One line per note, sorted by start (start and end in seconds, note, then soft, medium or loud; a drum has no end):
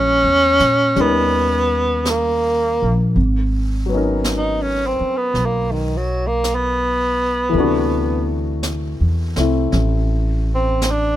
0.00 0.19 A#1 medium
0.00 0.94 G#3 soft
0.00 0.96 A#3 soft
0.00 0.96 C#4 soft
0.00 1.03 C#4 medium
0.00 0.98 E4 soft
0.00 1.00 G#4 soft
0.23 0.57 E2 soft
0.59 0.94 A#2 soft
0.59 snare soft
0.96 2.77 D#2 medium
0.96 3.15 G3 soft
0.96 3.16 C#4 soft
0.96 3.17 D#4 soft
0.96 brush sweep soft
0.96 snare soft
1.01 2.12 B3 medium
1.01 3.18 A#4 soft
2.05 brush sweep soft
2.05 snare soft
2.05 hi-hat pedal soft
2.11 3.01 A#3 medium
2.82 3.14 A#1 medium
3.15 4.97 G#1 medium
3.15 brush sweep soft
3.86 7.51 F#3 soft
3.86 7.53 B3 soft
3.92 7.55 C#4 soft
3.92 7.56 D#4 soft
3.97 7.57 A#4 soft
4.24 brush sweep soft
4.24 snare soft
4.24 hi-hat pedal soft
4.37 4.64 D#4 soft
4.62 4.88 C#4 medium
4.87 5.19 C4 medium
5.00 muted upright bass stroke soft
5.17 5.47 B3 medium
5.34 7.50 B1 medium
5.34 brush sweep soft
5.34 snare soft
5.46 5.73 A#3 soft
5.72 5.99 D#3 soft
5.97 6.29 F#3 soft
6.27 6.57 A#3 medium
6.44 brush sweep soft
6.44 snare soft
6.44 hi-hat pedal soft
6.55 8.35 B3 medium
7.49 11.16 E3 soft
7.49 9.35 A3 soft
7.53 8.96 D2 medium
7.53 11.16 C3 soft
7.53 brush sweep soft
7.58 11.16 D4 soft
7.58 11.16 F#4 soft
8.63 brush sweep soft
8.63 snare soft
8.63 hi-hat pedal soft
9.01 9.34 E2 soft
9.36 9.71 C2 soft
9.36 11.16 A3 soft
9.36 11.16 C4 soft
9.36 11.16 E4 soft
9.36 snare soft
9.72 11.16 A1 medium
9.72 brush sweep soft
9.72 snare soft
10.55 10.93 C4 medium
10.81 brush sweep soft
10.81 snare soft
10.81 hi-hat pedal soft
10.92 11.16 D4 medium